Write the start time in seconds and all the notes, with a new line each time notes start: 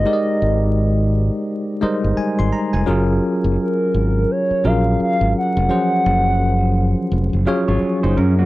Already playing: G#3 D#4 G4 A#4 C5 D#5
0.05 G#3 D#4 G4 A#4 D5
0.13 D#5
0.42 G#1
1.81 G3 G#3 D#4 A#4 C5 D#5, muted fingered electric bass stroke
2.04 G1
2.17 G#5, muted fingered electric bass stroke
2.39 G#1 C6
2.53 A#5
2.73 F1 G#5
2.86 F#1 F#3 C#4 F4 G#4 A#4
3.44 F#1
3.60 A#4
3.94 G#1
4.31 C#5
4.51 muted fingered electric bass stroke
4.64 A#1 F#3 C#4 F4 G#4 A#4 F5
5.00 F5, muted fingered electric bass stroke
5.21 G#1
5.38 F#5
5.57 F1
5.69 F3 F#3 C#4 G#4 C5
6.06 F#1
7.12 F1
7.33 F#1
7.46 F#3 C#4 F4 G#4 C#5 F5
7.68 G#1 F4 C#5
7.82 muted fingered electric bass stroke
8.03 F#1 D#4 C5
8.17 F#2 C#4 A#4
8.39 A#3 F#4